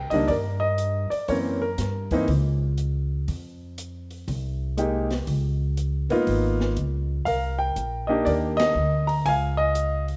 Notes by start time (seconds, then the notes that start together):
Already playing: A#4
0.10 C#2 D#3 G3 A#3 D4 D#5, open hi-hat
0.28 G2 A#4 D5, kick, open hi-hat
0.60 D#5
0.78 closed hi-hat
1.10 D5, muted upright bass stroke, open hi-hat
1.28 F#2 E3 A#3 C4 C#4 A#4 C#5, kick, open hi-hat
1.62 A#4
1.78 G2, snare, closed hi-hat
2.11 E3 A#3 C4 D#4, kick, open hi-hat
2.28 C#2, kick, open hi-hat
2.78 closed hi-hat
3.28 F2, kick, open hi-hat
3.78 closed hi-hat
4.11 open hi-hat
4.28 C2, kick, open hi-hat
4.77 G#3 A#3 D#4 G4, closed hi-hat
5.11 snare, open hi-hat
5.27 C#2, kick, open hi-hat
5.77 closed hi-hat
6.09 G#2 A#3 B3 D#4 F4, open hi-hat
6.27 G#1, kick, open hi-hat
6.60 snare
6.77 C#2, closed hi-hat
7.25 C2 A#4 F5, kick, open hi-hat
7.59 G5
7.76 A#1, closed hi-hat
8.07 A#3 D4 D#4 G4 D#5
8.25 D#2 A#4 D5, kick, open hi-hat
8.57 D#5, snare, ride
8.75 D2
9.07 A#5, open hi-hat
9.25 C#2 F5 G#5, kick, open hi-hat
9.57 D#5
9.75 closed hi-hat
10.08 open hi-hat